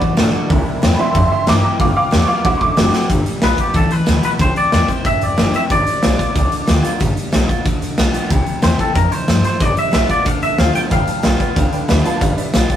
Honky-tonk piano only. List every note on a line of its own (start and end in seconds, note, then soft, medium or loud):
0.00 0.47 F#4 medium
0.00 0.70 D5 loud
0.50 0.96 A#3 medium
0.50 0.97 D4 medium
0.50 0.97 E4 medium
0.95 1.14 A#3 medium
0.95 1.14 D4 soft
0.95 0.98 B5 medium
1.00 1.14 E4 medium
1.00 1.14 E5 medium
1.00 1.15 C6 loud
1.16 1.30 E5 medium
1.16 1.31 C6 loud
1.32 1.47 E5 medium
1.32 1.48 C6 loud
1.48 1.63 A#5 medium
1.48 1.63 D6 loud
1.64 1.79 A#5 medium
1.64 1.80 D6 medium
1.80 2.01 A3 medium
1.80 2.02 B3 medium
1.80 2.02 F4 medium
1.80 1.95 F5 medium
1.80 1.95 D6 medium
1.97 2.11 F5 medium
1.97 2.12 D6 loud
2.25 2.44 F5 medium
2.25 2.27 C#6 medium
2.29 2.44 D6 loud
2.44 2.66 F#3 medium
2.44 2.66 C4 medium
2.44 2.67 E4 medium
2.44 2.60 F#5 loud
2.44 2.60 D6 loud
2.57 2.60 C#6 medium
2.62 3.09 D6 loud
10.90 11.01 B4 loud
10.90 11.01 D5 medium
10.90 11.01 G5 loud
11.07 11.17 B4 medium
11.07 11.18 D5 medium
11.07 11.18 A5 medium
11.24 11.34 B4 medium
11.24 11.34 D5 medium
11.24 11.34 G5 medium
11.39 11.50 B4 medium
11.39 11.50 D5 medium
11.39 11.50 G5 medium
11.56 11.66 B4 medium
11.56 11.66 D5 medium
11.56 11.66 G5 loud
11.72 11.82 B4 medium
11.72 11.82 D5 medium
11.72 11.83 G5 loud
11.88 11.99 B4 loud
11.88 11.99 D5 loud
11.88 11.99 E5 loud
12.05 12.15 B4 loud
12.05 12.15 D5 medium
12.05 12.15 A5 loud
12.21 12.31 B4 loud
12.21 12.31 D5 loud
12.21 12.31 F5 loud
12.37 12.47 B4 medium
12.37 12.47 D5 medium
12.37 12.48 E5 loud
12.54 12.64 B4 medium
12.54 12.64 D5 medium
12.54 12.64 F5 medium
12.70 12.77 B4 medium
12.70 12.77 D5 medium
12.70 12.77 G5 medium